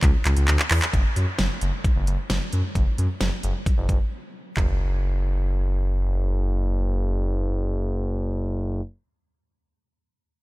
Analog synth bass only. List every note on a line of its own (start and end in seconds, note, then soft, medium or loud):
0.03 0.12 C#2 loud
0.25 0.35 C#2 loud
0.37 0.46 C#2 loud
0.48 0.57 D2 loud
0.71 0.80 E2 loud
0.93 1.03 F#1 loud
1.16 1.26 F#2 medium
1.39 1.48 F#1 medium
1.62 1.71 F#1 loud
1.96 2.05 F#1 medium
2.07 2.17 F#1 loud
2.30 2.39 F#1 loud
2.53 2.62 F#2 medium
2.75 2.85 F#1 loud
2.98 3.07 F#2 loud
3.21 3.30 F#1 loud
3.44 3.53 F#1 loud
3.78 3.87 F#1 medium
3.89 3.98 F#1 medium
4.57 8.81 F#1 loud